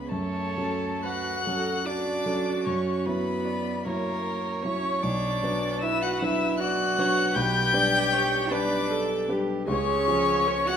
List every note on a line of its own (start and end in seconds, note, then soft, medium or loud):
0.00 0.14 C#2 soft
0.00 0.13 B3 medium
0.00 0.13 C#4 soft
0.00 0.13 G#4 soft
0.00 0.13 B4 medium
0.00 0.11 B5 medium
0.09 0.56 F#2 medium
0.09 1.06 A3 medium
0.09 1.07 A4 medium
0.09 1.05 C#5 medium
0.09 1.03 A5 medium
0.57 1.43 F#3 soft
0.57 1.43 C#4 soft
0.57 1.43 A4 medium
1.03 1.89 F#4 medium
1.03 1.45 B4 medium
1.03 1.87 F#5 medium
1.03 1.88 F#6 loud
1.46 2.23 F#3 soft
1.46 2.23 C#4 soft
1.46 1.87 A4 medium
1.46 2.23 A4 medium
1.85 2.65 D4 medium
1.85 3.46 F#4 medium
1.85 2.65 D5 medium
1.85 2.68 D6 loud
2.26 2.62 F#3 soft
2.26 2.62 C#4 soft
2.26 2.63 A4 medium
2.65 3.05 F#2 medium
2.65 3.09 C#4 medium
2.65 3.07 C#5 medium
2.65 3.07 C#6 medium
3.06 3.82 F#3 soft
3.06 3.87 B3 medium
3.06 3.82 E4 soft
3.06 3.85 B4 medium
3.06 3.82 C#5 medium
3.06 3.87 B5 medium
3.45 3.86 D5 medium
3.85 4.61 F#3 medium
3.85 4.65 A#3 medium
3.85 4.61 E4 medium
3.85 4.64 A#4 medium
3.85 5.85 C#5 medium
3.85 4.61 C#5 medium
3.85 4.64 A#5 medium
4.63 5.00 F#3 medium
4.63 5.02 C#4 medium
4.63 5.00 E4 medium
4.63 5.02 C#5 medium
4.63 5.01 C#5 medium
4.63 5.04 C#6 medium
5.03 5.42 B1 medium
5.03 5.84 D4 medium
5.03 5.83 D5 medium
5.03 5.81 D6 loud
5.43 6.18 F#3 medium
5.43 6.18 D4 medium
5.43 6.18 B4 medium
5.81 6.04 E4 medium
5.81 6.60 B4 medium
5.81 6.03 E5 medium
5.81 6.04 E6 loud
6.02 6.23 F#4 medium
6.02 6.25 F#5 medium
6.02 6.21 F#6 medium
6.21 6.94 F#3 medium
6.21 6.94 D4 medium
6.21 6.61 E4 medium
6.21 6.94 B4 medium
6.21 6.61 E5 medium
6.21 6.59 E6 loud
6.59 7.34 F#4 medium
6.59 7.00 D5 medium
6.59 7.37 F#5 medium
6.59 7.36 F#6 loud
6.98 7.32 F#3 medium
6.98 7.32 D4 medium
6.98 7.33 B4 medium
6.98 7.37 C#5 medium
7.35 7.72 B1 medium
7.35 8.50 G4 loud
7.35 7.75 B4 medium
7.35 8.53 G5 loud
7.35 8.53 G6 loud
7.73 8.46 G3 medium
7.73 8.47 D4 medium
7.73 8.47 B4 medium
7.73 8.14 D5 medium
8.13 8.52 C#5 medium
8.49 9.24 G3 medium
8.49 9.28 D4 medium
8.49 9.25 D4 medium
8.49 8.92 B4 medium
8.49 9.25 B4 medium
8.49 9.29 D5 medium
8.49 9.29 D6 loud
8.90 9.31 A4 medium
9.29 9.64 G3 medium
9.29 9.64 D4 medium
9.29 9.67 G4 medium
9.29 9.65 B4 medium
9.67 10.07 C#2 medium
9.67 10.68 C#4 loud
9.67 10.49 G#4 medium
9.67 10.70 C#5 loud
9.67 10.69 C#6 loud
10.08 10.77 F3 medium
10.08 10.77 C#4 medium
10.08 10.77 G#4 medium
10.47 10.77 C#5 loud
10.67 10.77 F#4 loud
10.67 10.77 F#5 loud
10.67 10.77 F#6 loud